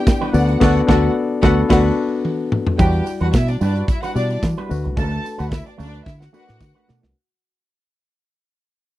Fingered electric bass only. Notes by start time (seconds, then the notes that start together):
0.34 D2
0.62 D2
0.89 D2
1.43 D2
1.70 D2
2.80 E2
3.21 E2
3.34 B2
3.61 G2
4.16 B2
4.43 E3
4.71 D2
4.86 C2
4.97 D2
5.40 D2
5.80 D2
6.07 D3
6.50 A2
6.61 D3
6.90 B2
7.04 C2